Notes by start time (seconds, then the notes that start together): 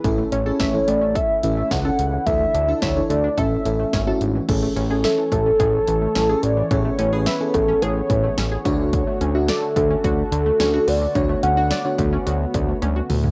0.04 A1 E3 A3 C#4 E4 A4, kick, closed hi-hat
0.18 A3
0.32 A1 C#4 C#5, closed hi-hat
0.46 C#4 E4 G#4 A4
0.60 A1 E5, kick, snare, closed hi-hat
0.73 E3 C#4 E4 A4
0.87 A1 A3 D5, closed hi-hat
1.01 C#4
1.15 A4 E5, kick, closed hi-hat
1.43 A1 E3 C#4 E4 A4 E5, closed hi-hat
1.57 A3
1.71 C#2 C#4 F#5, kick, snare, closed hi-hat
1.85 C#4 E4 A4
1.99 C#2, closed hi-hat
2.13 E3
2.26 D2 D3 E3 D4 E4 A4 E5, kick, closed hi-hat
2.41 A3
2.54 D2 D4, closed hi-hat
2.68 D4 E4 A4
2.82 D2 C#5 E5, kick, snare, closed hi-hat
2.96 E3 D4 E4 A4
3.10 D2 A3 D5, closed hi-hat
3.24 D4
3.37 A1 A3 C#4 E4 A4 E5, kick, closed hi-hat
3.65 A1 E3 C#4 E4 A4, closed hi-hat
3.79 A3
3.93 G#1 C#4, kick, snare, closed hi-hat
4.07 C#4 E4 F#4 A4
4.21 G#1, closed hi-hat
4.35 E3
4.48 A1 E3 A3 C#4 G#4 A4 C#5, kick, closed hi-hat, crash
4.63 A3
4.76 A1 C#4, closed hi-hat
4.90 C#4 G#4 A4 G#5
5.04 A4 E5, snare, closed hi-hat
5.18 E3
5.32 A1 A3 A4, kick, closed hi-hat
5.46 C#4
5.60 A1 G#4, kick, closed hi-hat
5.88 A1 E3, closed hi-hat
6.02 A3
6.15 A1 C#4, snare, closed hi-hat
6.29 C#4 G#4 A4
6.43 A1 D5, closed hi-hat
6.57 E3
6.70 A1 E3 B3 C#4 G#4 A4 C#5, kick, closed hi-hat
6.85 A3
6.99 A1 C#4, closed hi-hat
7.13 C#4 G#4 B4
7.26 B4 E5, snare, closed hi-hat
7.40 E3 C#4 G#4 A4
7.54 A1 A3 A4, kick, closed hi-hat
7.68 C#4
7.82 A1 G#4 C#5, closed hi-hat
8.10 A1 E3, kick, closed hi-hat
8.24 A3
8.38 A1 C#4, snare, closed hi-hat
8.52 G#4
8.65 D2 D3 A3 D4 F#4 C#5, kick, closed hi-hat
8.79 D3
8.93 D3, kick, closed hi-hat
9.07 A3
9.21 D2 C#4, closed hi-hat
9.35 D4 F#4 E5
9.48 A4 D5, snare, closed hi-hat
9.62 D3
9.76 D2 A3 A4, kick, closed hi-hat
9.90 C#4
10.04 D2 F#4, kick, closed hi-hat
10.32 D2 D3, closed hi-hat
10.46 A3
10.60 D2 C#4, snare, closed hi-hat
10.74 D4 F#4 A4
10.88 D2 B3 D5, open hi-hat
11.01 D3
11.15 D2 D3 D4 F#4 C#5, kick, closed hi-hat
11.29 A3
11.43 D2 C#4 F#5, closed hi-hat
11.57 D4 F#4 C#5
11.71 D5, snare, closed hi-hat
11.85 D3 D4 F#4 C#5
11.98 D2 A3, kick, closed hi-hat
12.13 C#4
12.27 D2 F#4, closed hi-hat
12.54 D2 D3, kick, closed hi-hat
12.68 A3
12.82 D2 C#4, closed hi-hat, high tom
12.96 F#4
13.10 D2, mid tom, open hi-hat
13.24 D3, floor tom